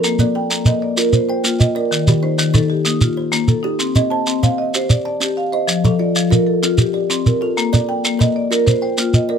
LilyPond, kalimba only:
\new Staff \with { instrumentName = "Kalimba" } { \time 12/8 \key bes \major \tempo 4. = 128 << { r8 d''8 bes'4. r4. g''4. r8 | r8 g'8 ees'4. r4. c''4. r8 | r8 ees''8 c''4. r4. a''4. r8 | r8 a'8 f'4. r4. d''4. r8 |
r8 d''8 bes'4. r4. g''4. r8 | } \\ { a'8 bes4 r8 bes'4 f'4 r8 bes4 d''8~ | d''8 ees4 r8 ees'4 bes4 r8 ees4 g'8~ | g'8 c'4 r8 c''4 g'4 r8 c'4 ees''8~ | ees''8 f4 r8 f'4 c'4 r8 f4 a'8~ |
a'8 bes4 r8 bes'4 f'4 r8 bes4 d''8 | } >> }